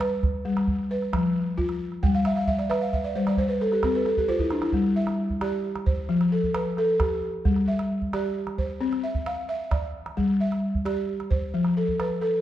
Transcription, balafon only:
Already playing: D5
0.00 B4
0.45 G3
0.91 B4
1.13 F3
1.58 F4
2.03 G3 G5
2.14 F5
2.26 E5
2.36 F5
2.48 E5
2.58 D5
2.70 B4 E5
2.81 F5
2.93 E5
3.04 D5
3.15 G3 C5
3.27 D5
3.38 C5
3.48 B4
3.61 A4
3.72 G4
3.84 C4 A4
3.95 B4
4.06 A4
4.18 G4
4.28 F4 C5
4.39 E4
4.52 D4
4.62 E4
4.74 G3
4.96 E5
5.41 G4 D5
5.86 C5
6.09 F3
6.32 A4
6.55 B4
6.78 A4
7.01 G4
7.45 G3
7.68 E5
8.13 G4 D5
8.58 C5
8.81 C4
9.03 E5
9.26 F5
9.49 E5
9.71 D5
10.17 G3
10.41 E5
10.85 G4 D5
11.30 C5
11.54 F3
11.77 A4
12.00 B4
12.21 A4

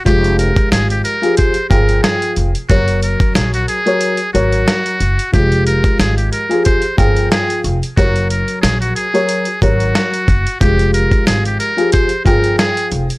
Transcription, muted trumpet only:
0.05 G4
0.39 A#4
0.72 G#4
0.90 G4
1.04 A#4
1.37 C5
1.70 A#4
2.03 G#4
2.69 F#4
3.03 A#4
3.35 G#4
3.54 F#4
3.68 G#4
4.33 F#4
5.33 G4
5.67 A#4
6.00 G#4
6.17 G4
6.32 A#4
6.65 C5
6.98 A#4
7.32 G#4
7.97 F#4
8.31 A#4
8.62 G#4
8.81 F#4
8.96 G#4
9.62 F#4
10.60 G4
10.94 A#4
11.27 G#4
11.46 G4
11.60 A#4
11.93 C5
12.25 A#4
12.59 G#4

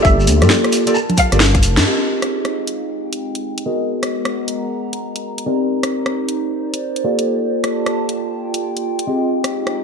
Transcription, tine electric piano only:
Already playing: A#3 F4 G4 A4 D5
0.42 A#3 F4 G4 A4 D5
0.87 A#3 F4 G4 A4 D5
1.32 A#3 F4 G4 A4 D5
1.85 C4 F4 G4 G#4 D#5
3.66 B3 F#4 G#4 A#4 D#5
5.46 C4 D#4 G4 A#4 D5
7.04 A#3 F4 G4 A4 D5
9.07 C4 F4 G4 G#4 D#5

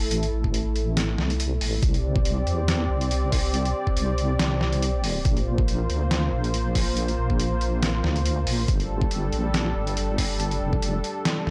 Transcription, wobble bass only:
Already playing: A1
0.33 A1
1.18 C2
1.61 A1
1.83 C2
2.47 E2
2.90 C2
3.97 C2
4.40 C2
5.25 A#1
5.90 D2
6.32 A#1
7.18 A#1
8.04 D2
8.47 A#1
8.68 G1
9.33 A#1
9.76 G1
10.61 F1
11.47 D2

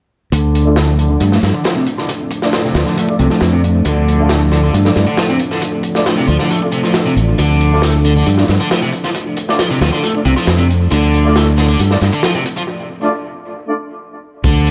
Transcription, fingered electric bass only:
0.32 D2
1.21 G2
1.43 G2
2.75 D2
3.19 C2
3.41 F2
3.86 D2
4.74 G2
4.96 G2
6.28 D2
7.17 A1
7.39 D2
8.27 G2
8.49 G2
9.81 D2
10.25 C2
10.47 F2
10.92 D2
11.79 G2
12.01 G2
14.44 D2

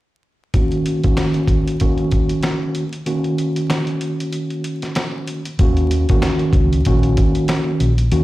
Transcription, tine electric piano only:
0.55 D#3 A#3 C#4 F#4
1.04 D#3 A#3 C#4 F#4
1.81 D#3 A#3 C#4 F#4
3.06 D#3 A#3 C#4 F#4
5.60 D#3 A#3 C#4 F#4
6.10 D#3 A#3 C#4 F#4
6.86 D#3 A#3 C#4 F#4
8.12 D#3 A#3 C#4 F#4

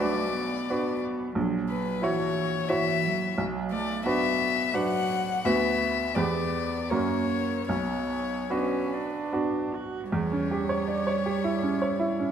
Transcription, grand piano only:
Already playing: B1
0.00 D4 F#4 B4
0.70 D4 F#4 B4
1.35 A#1
2.02 E4 F#4 C#5
2.69 E4 F#4 C#5
3.38 B1
4.06 D4 F#4 B4
4.74 D4 F#4 B4
5.45 D2 B3 F#4 B4
6.16 E2 B3 G4 B4
6.91 F#2 A#3 C#4 F#4
7.69 B1
8.50 B3 D4 F#4
9.33 B3 D4 F#4
10.12 E2
10.32 C#4
10.51 G4
10.69 C#5
10.88 D5
11.07 C#5
11.26 G4
11.44 E4
11.63 C#4
11.82 C#5
12.00 E4
12.19 C#4

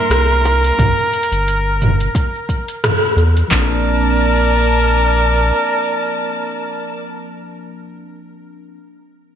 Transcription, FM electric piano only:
Already playing: G3 A#3 D4 E4
3.48 F3 A#3
3.53 C4 D4

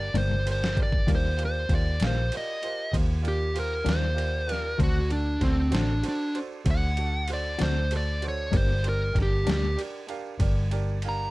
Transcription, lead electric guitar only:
Already playing: D5
0.18 C5
0.52 C5
0.83 D5
1.15 C5
1.45 C5
1.75 D5
2.07 C5
2.37 D#5
3.28 G4
3.60 A#4
3.90 C5
4.53 A#4
4.83 F#4
5.12 D4
5.43 C4
5.74 D4
6.08 D4
6.71 F#5
7.33 D5
7.63 C5
7.97 D5
8.28 C#5
8.57 C5
8.89 A#4
9.22 G4
9.52 G4
11.09 A#5

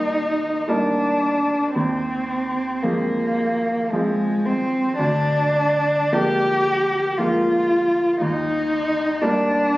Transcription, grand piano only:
Already playing: D#2 G3 A#3 D#4
0.68 G3 A#3 D#4
1.76 D#2
2.84 F3 G#3 C4
3.93 F3 G#3 C4
4.99 D2
6.12 F3 G#3 A#3
7.19 F3 G#3 A#3
8.21 D#2
9.22 G3 A#3

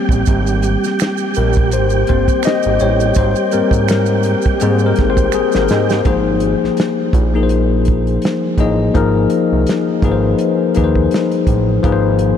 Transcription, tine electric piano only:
Already playing: G3 A#3 C4
1.37 A#4
1.74 C5
2.08 G3 A#3 C4 C5
2.45 D#5
2.81 C#5
3.17 C5
3.53 G3 A#3 C4 A#4
3.90 A#4
4.61 G3 A#3 C4 G#4
4.86 A#4
5.10 C5
5.34 G#4
5.59 A#4
6.04 F3 A#3 D#4 G#4 C5
7.34 F3 A#3 D#4 G#4 A#4
7.43 C5
8.58 F3 A#3 D#4 G#4 D#5
8.94 F3 A#3 D#4 G#4 A#4
10.03 F3 A#3 D#4 G#4 B4
10.12 C5
10.75 F3 A#3 D#4 G#4 B4
10.84 C5
11.83 F3 A#3 D#4 G#4 B4
11.92 C5

